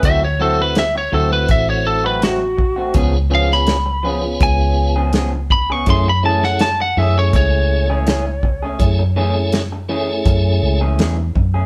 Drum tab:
HH |x---x---x---x---|x---x---x---x---|x---x---x---x---|x---x---x---x---|
SD |----o-------o---|---oo-------o---|---oo-------o---|----o-------o---|
BD |o-------o-----o-|o-------o-----o-|o-------o-----o-|o-------o-----o-|